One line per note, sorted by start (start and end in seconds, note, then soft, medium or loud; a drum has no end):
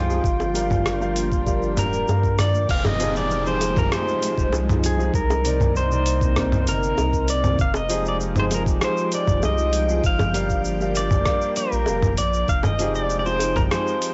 0.00 0.21 C2 medium
0.00 2.66 F3 medium
0.00 0.22 G#3 medium
0.00 0.20 D#4 medium
0.00 2.05 F4 medium
0.00 2.66 G5 medium
0.08 0.22 F3 medium
0.08 0.22 C4 medium
0.08 0.22 D#4 medium
0.08 0.22 G4 medium
0.08 0.23 G#4 loud
0.08 cabasa soft
0.24 1.79 G1 medium
0.24 2.67 A#3 medium
0.24 2.67 D4 medium
0.24 kick loud
0.24 cabasa soft
0.40 high bongo medium
0.40 cabasa soft
0.54 0.97 G3 medium
0.54 0.97 G4 medium
0.54 0.97 A#4 medium
0.54 0.98 D5 medium
0.54 0.98 F5 loud
0.54 closed hi-hat medium
0.54 cabasa medium
0.70 kick medium
0.70 mid tom medium
0.70 cabasa soft
0.86 cross-stick medium
0.86 cabasa soft
1.00 1.43 G3 medium
1.00 1.43 G4 medium
1.00 1.43 A#4 medium
1.00 1.43 D5 medium
1.00 1.44 F5 loud
1.00 cabasa soft
1.16 closed hi-hat medium
1.16 cabasa medium
1.32 kick loud
1.32 cabasa soft
1.45 2.04 G3 medium
1.45 2.04 G4 medium
1.45 2.04 A#4 medium
1.45 2.05 D5 medium
1.45 2.05 F5 medium
1.45 kick medium
1.45 cabasa soft
1.62 cabasa soft
1.77 2.04 D1 loud
1.77 2.41 A#4 medium
1.77 closed hi-hat medium
1.77 mid tom medium
1.77 cabasa medium
1.93 cabasa soft
2.07 2.66 G2 medium
2.07 2.29 G3 medium
2.07 2.29 G4 medium
2.07 2.29 A#4 medium
2.07 2.30 D5 medium
2.07 2.30 F5 medium
2.07 high bongo medium
2.07 cabasa soft
2.23 kick medium
2.23 cabasa soft
2.39 2.70 D5 loud
2.39 cross-stick medium
2.39 closed hi-hat medium
2.39 mid tom medium
2.39 cabasa medium
2.54 cabasa soft
2.68 3.88 F1 loud
2.68 5.11 F3 medium
2.68 5.11 G#3 medium
2.68 10.00 D#4 medium
2.68 2.86 F5 loud
2.68 5.11 G5 medium
2.68 kick loud
2.68 crash loud
2.68 downlifter medium
2.68 cabasa soft
2.85 3.17 D#5 loud
2.85 mid tom medium
2.85 high bongo medium
2.85 cabasa soft
2.99 3.42 F3 loud
2.99 3.42 C4 medium
2.99 3.42 D#4 medium
2.99 3.42 G4 medium
2.99 3.43 G#4 loud
2.99 closed hi-hat medium
2.99 cabasa medium
3.16 3.48 D5 medium
3.16 cabasa soft
3.31 cabasa soft
3.44 3.87 F3 medium
3.44 3.87 C4 medium
3.44 3.88 D#4 medium
3.44 3.88 G4 medium
3.44 3.88 G#4 loud
3.44 3.78 C5 medium
3.44 cabasa soft
3.61 closed hi-hat medium
3.61 high bongo medium
3.61 cabasa medium
3.76 3.93 A#4 medium
3.76 kick loud
3.76 mid tom medium
3.76 cabasa soft
3.91 4.49 F3 medium
3.91 4.49 C4 medium
3.91 4.49 D#4 medium
3.91 4.49 G4 medium
3.91 4.50 G#4 medium
3.91 4.54 C5 medium
3.91 cross-stick medium
3.91 cabasa soft
4.08 cabasa soft
4.23 closed hi-hat medium
4.23 cabasa medium
4.38 4.51 F1 medium
4.38 kick medium
4.38 cabasa soft
4.52 5.10 C2 medium
4.52 4.95 F3 medium
4.52 4.95 C4 medium
4.52 4.95 D#4 medium
4.52 4.96 G4 medium
4.52 4.96 G#4 medium
4.52 high bongo medium
4.52 cabasa soft
4.70 mid tom medium
4.70 cabasa soft
4.84 5.13 G#4 medium
4.84 closed hi-hat loud
4.84 cabasa medium
4.98 5.12 F3 medium
4.98 5.12 C4 medium
4.98 5.12 D#4 medium
4.98 5.12 G4 medium
4.98 5.13 G#4 loud
4.98 cabasa soft
5.13 6.68 C2 loud
5.13 7.56 A#3 medium
5.13 7.56 C4 medium
5.13 5.77 A#4 medium
5.13 kick loud
5.13 cabasa soft
5.30 high bongo medium
5.30 cabasa soft
5.44 5.87 C3 loud
5.44 5.87 C4 medium
5.44 5.87 D#4 medium
5.44 5.88 A#4 medium
5.44 5.88 D5 loud
5.44 closed hi-hat medium
5.44 cabasa medium
5.60 kick medium
5.60 mid tom medium
5.60 cabasa soft
5.76 6.68 C5 medium
5.76 cabasa soft
5.91 6.33 C3 medium
5.91 6.33 C4 medium
5.91 6.33 D#4 medium
5.91 6.33 A#4 medium
5.91 6.33 D5 loud
5.91 cabasa soft
6.06 closed hi-hat medium
6.06 cabasa medium
6.21 kick loud
6.21 cabasa soft
6.36 6.94 C3 medium
6.36 6.94 C4 medium
6.36 6.95 D#4 medium
6.36 6.95 A#4 medium
6.36 6.95 D5 medium
6.36 kick loud
6.36 cross-stick medium
6.36 cabasa soft
6.52 mid tom medium
6.52 cabasa soft
6.67 6.93 G1 loud
6.67 7.31 A#4 medium
6.67 closed hi-hat medium
6.67 cabasa medium
6.83 cabasa soft
6.98 7.55 C2 medium
6.98 7.40 C3 medium
6.98 7.40 C4 medium
6.98 7.40 D#4 medium
6.98 7.41 A#4 medium
6.98 7.41 D#5 medium
6.98 high bongo medium
6.98 cabasa soft
7.13 kick medium
7.13 cabasa soft
7.28 7.58 D5 loud
7.28 closed hi-hat medium
7.28 cabasa medium
7.44 7.57 C3 medium
7.44 7.58 C4 medium
7.44 7.58 D#4 medium
7.44 7.58 A#4 medium
7.44 7.58 D5 medium
7.44 mid tom medium
7.44 cabasa soft
7.58 8.78 F1 loud
7.58 12.45 F3 medium
7.58 10.01 G#3 medium
7.58 7.76 F5 loud
7.58 12.45 G5 medium
7.58 kick loud
7.58 cabasa soft
7.74 8.07 D#5 loud
7.74 high bongo loud
7.74 cabasa soft
7.89 8.32 F3 medium
7.89 8.32 C4 medium
7.89 8.32 D#4 medium
7.89 8.32 G4 medium
7.89 8.33 G#4 loud
7.89 closed hi-hat medium
7.89 cabasa medium
8.05 8.16 D5 loud
8.05 cabasa soft
8.20 cabasa soft
8.36 8.78 F3 medium
8.36 8.78 C4 medium
8.36 8.79 D#4 medium
8.36 8.79 G4 medium
8.36 8.79 G#4 loud
8.36 8.45 C5 medium
8.36 mid tom medium
8.36 cabasa soft
8.51 8.62 A#4 loud
8.51 closed hi-hat medium
8.51 high bongo medium
8.51 cabasa medium
8.66 kick loud
8.66 cabasa soft
8.81 9.39 F3 medium
8.81 9.39 C4 medium
8.81 9.40 D#4 medium
8.81 9.40 G4 medium
8.81 9.40 G#4 medium
8.81 9.12 C5 medium
8.81 cross-stick medium
8.81 cabasa soft
8.97 cabasa soft
9.12 9.42 D5 medium
9.12 closed hi-hat medium
9.12 cabasa medium
9.27 9.40 F1 medium
9.27 kick loud
9.27 mid tom medium
9.27 cabasa soft
9.42 10.01 C2 medium
9.42 9.85 F3 medium
9.42 9.85 C4 medium
9.42 9.85 D#4 medium
9.42 9.86 G4 medium
9.42 9.86 G#4 medium
9.42 10.07 D#5 loud
9.42 high bongo medium
9.42 cabasa soft
9.58 cabasa soft
9.73 closed hi-hat medium
9.73 cabasa medium
9.89 10.02 F3 medium
9.89 10.02 C4 medium
9.89 10.02 D#4 medium
9.89 10.02 G4 medium
9.89 10.03 G#4 loud
9.89 cabasa soft
10.04 11.23 G1 loud
10.04 12.47 A#3 medium
10.04 12.47 D4 medium
10.04 10.62 F5 medium
10.04 kick loud
10.04 cabasa soft
10.19 mid tom medium
10.19 high bongo medium
10.19 cabasa soft
10.34 10.77 G3 medium
10.34 10.77 G4 medium
10.34 10.77 A#4 medium
10.34 10.77 D5 medium
10.34 10.77 F5 loud
10.34 closed hi-hat medium
10.34 cabasa medium
10.50 kick medium
10.50 cabasa soft
10.65 cabasa soft
10.80 11.23 G3 medium
10.80 11.23 G4 medium
10.80 11.23 A#4 medium
10.80 11.23 D5 medium
10.80 11.23 F5 loud
10.80 cabasa soft
10.95 11.59 D5 loud
10.95 closed hi-hat medium
10.95 cabasa medium
11.11 kick loud
11.11 mid tom medium
11.11 cabasa soft
11.25 11.84 G3 medium
11.25 11.84 G4 medium
11.25 11.84 A#4 medium
11.25 11.84 D5 medium
11.25 11.85 F5 medium
11.25 kick loud
11.25 cross-stick medium
11.25 cabasa soft
11.41 cabasa soft
11.56 12.20 A#4 medium
11.56 closed hi-hat medium
11.56 cabasa medium
11.72 11.85 A#1 medium
11.72 cabasa soft
11.86 12.20 F1 medium
11.86 12.09 G3 medium
11.86 12.10 G4 medium
11.86 12.10 A#4 medium
11.86 12.10 D5 medium
11.86 12.10 F5 medium
11.86 high bongo medium
11.86 cabasa soft
12.02 kick medium
12.02 mid tom medium
12.02 cabasa soft
12.17 12.44 A#1 loud
12.17 12.50 D5 loud
12.17 closed hi-hat medium
12.17 cabasa medium
12.33 cabasa soft
12.48 13.67 F1 medium
12.48 14.14 F3 medium
12.48 14.14 G#3 medium
12.48 14.14 D#4 medium
12.48 12.65 F5 loud
12.48 14.14 G5 medium
12.48 kick loud
12.48 cabasa soft
12.63 12.95 D#5 loud
12.63 mid tom medium
12.63 high bongo loud
12.63 cabasa soft
12.79 13.22 F3 loud
12.79 13.22 C4 medium
12.79 13.22 D#4 medium
12.79 13.22 G4 medium
12.79 13.23 G#4 loud
12.79 closed hi-hat medium
12.79 cabasa medium
12.95 13.18 D5 loud
12.95 cabasa soft
13.10 cabasa soft
13.19 13.26 D5 medium
13.25 13.67 F3 medium
13.25 13.67 C4 medium
13.25 13.68 D#4 medium
13.25 13.68 G4 medium
13.25 13.68 G#4 loud
13.25 13.57 C5 medium
13.25 cabasa soft
13.39 closed hi-hat medium
13.39 high bongo medium
13.39 cabasa medium
13.56 13.61 A#4 medium
13.56 kick loud
13.56 mid tom medium
13.56 cabasa soft
13.71 14.14 F3 medium
13.71 14.14 C4 medium
13.71 14.14 D#4 medium
13.71 14.14 G4 medium
13.71 14.14 G#4 loud
13.71 14.14 C5 medium
13.71 cross-stick medium
13.71 cabasa soft
13.87 cabasa soft
14.02 closed hi-hat medium
14.02 cabasa medium